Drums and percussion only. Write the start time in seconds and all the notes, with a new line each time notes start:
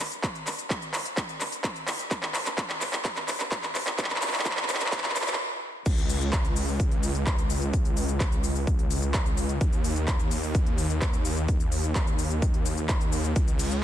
0.00 clap, open hi-hat, shaker
0.12 closed hi-hat, shaker
0.23 kick, clap, closed hi-hat, shaker
0.35 closed hi-hat, shaker
0.47 clap, open hi-hat, shaker
0.59 closed hi-hat, shaker
0.70 kick, clap, closed hi-hat, shaker
0.82 closed hi-hat, shaker
0.94 clap, open hi-hat, shaker
1.05 closed hi-hat, shaker
1.17 kick, clap, closed hi-hat, shaker
1.29 closed hi-hat, shaker
1.41 clap, open hi-hat, shaker
1.52 closed hi-hat, shaker
1.64 kick, clap, closed hi-hat, shaker
1.76 closed hi-hat, shaker
1.88 clap, open hi-hat, shaker
1.99 closed hi-hat, shaker
2.11 kick, clap, closed hi-hat, shaker
2.23 clap, closed hi-hat, shaker
2.34 clap, open hi-hat, shaker
2.46 clap, closed hi-hat, shaker
2.58 kick, clap, closed hi-hat, shaker
2.70 clap, closed hi-hat, shaker
2.81 clap, open hi-hat, shaker
2.93 clap, closed hi-hat, shaker
3.05 kick, clap, closed hi-hat, shaker
3.16 clap, closed hi-hat, shaker
3.28 clap, open hi-hat, shaker
3.40 clap, closed hi-hat, shaker
3.52 kick, clap, closed hi-hat, shaker
3.63 clap, closed hi-hat, shaker
3.75 clap, open hi-hat, shaker
3.87 clap, closed hi-hat, shaker
3.98 kick, clap, closed hi-hat, shaker
4.04 clap
4.10 clap, closed hi-hat, shaker
4.16 clap
4.22 clap, open hi-hat, shaker
4.28 clap
4.34 clap, open hi-hat, shaker
4.39 clap
4.45 kick, clap, closed hi-hat, shaker
4.51 clap
4.57 clap, closed hi-hat, shaker
4.63 clap
4.69 clap, open hi-hat, shaker
4.75 clap
4.81 clap, closed hi-hat, shaker
4.86 clap
4.92 kick, clap, closed hi-hat, shaker
4.98 clap
5.04 clap, closed hi-hat, shaker
5.10 clap
5.16 clap, open hi-hat, shaker
5.21 clap
5.27 clap, closed hi-hat, shaker
5.33 clap
5.86 kick, closed hi-hat, crash, shaker
5.98 closed hi-hat, shaker
6.09 open hi-hat, shaker
6.21 closed hi-hat, shaker
6.33 kick, clap, closed hi-hat, shaker
6.45 closed hi-hat, shaker
6.56 open hi-hat, shaker
6.68 shaker
6.80 kick, closed hi-hat, shaker
6.91 closed hi-hat
7.03 open hi-hat, shaker
7.15 closed hi-hat, shaker
7.27 kick, clap, closed hi-hat, shaker
7.38 closed hi-hat, shaker
7.50 open hi-hat, shaker
7.62 closed hi-hat, shaker
7.73 kick, closed hi-hat, shaker
7.85 closed hi-hat, shaker
7.97 open hi-hat, shaker
8.09 closed hi-hat, shaker
8.20 kick, clap, closed hi-hat, shaker
8.32 closed hi-hat, shaker
8.44 open hi-hat, shaker
8.56 shaker
8.67 kick, closed hi-hat, shaker
8.79 closed hi-hat
8.91 open hi-hat, shaker
9.02 closed hi-hat, shaker
9.14 kick, clap, closed hi-hat, shaker
9.26 closed hi-hat, shaker
9.37 open hi-hat, shaker
9.49 closed hi-hat, shaker
9.61 kick, closed hi-hat, shaker
9.73 closed hi-hat, shaker
9.84 open hi-hat, shaker
9.96 closed hi-hat, shaker
10.08 kick, clap, closed hi-hat, shaker
10.20 closed hi-hat, shaker
10.31 open hi-hat, shaker
10.43 shaker
10.55 kick, closed hi-hat, shaker
10.66 closed hi-hat
10.78 open hi-hat, shaker
10.90 closed hi-hat, shaker
11.02 kick, clap, closed hi-hat, shaker
11.13 closed hi-hat, shaker
11.25 open hi-hat, shaker
11.37 closed hi-hat, shaker
11.48 kick, closed hi-hat, shaker
11.60 closed hi-hat, shaker
11.72 open hi-hat, shaker
11.84 closed hi-hat, shaker
11.95 kick, clap, closed hi-hat, shaker
12.07 closed hi-hat, shaker
12.19 open hi-hat, shaker
12.30 closed hi-hat, shaker
12.42 kick, closed hi-hat, shaker
12.54 closed hi-hat
12.66 open hi-hat, shaker
12.77 closed hi-hat, shaker
12.89 kick, clap, closed hi-hat, shaker
13.01 closed hi-hat, shaker
13.12 open hi-hat, shaker
13.24 closed hi-hat, shaker
13.36 kick, closed hi-hat, shaker
13.48 closed hi-hat, shaker
13.59 open hi-hat, ride, shaker
13.71 closed hi-hat, shaker